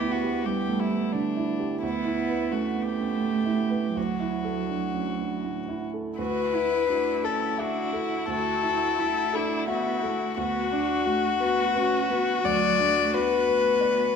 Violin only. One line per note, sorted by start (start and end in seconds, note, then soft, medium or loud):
0.00 0.13 G4 medium
0.12 0.47 F#4 soft
0.46 0.81 G4 soft
0.80 1.14 E4 soft
1.12 1.82 D4 soft
1.82 2.53 E4 soft
2.52 2.87 F#4 soft
2.88 3.98 G4 soft
3.97 5.83 F#4 soft
6.19 7.26 B4 medium
7.25 7.61 A4 medium
7.60 8.29 F#4 medium
8.30 9.36 A4 medium
9.35 9.69 E4 medium
9.69 10.37 F#4 medium
10.38 12.46 F#4 medium
12.44 13.15 D5 medium
13.13 14.16 B4 medium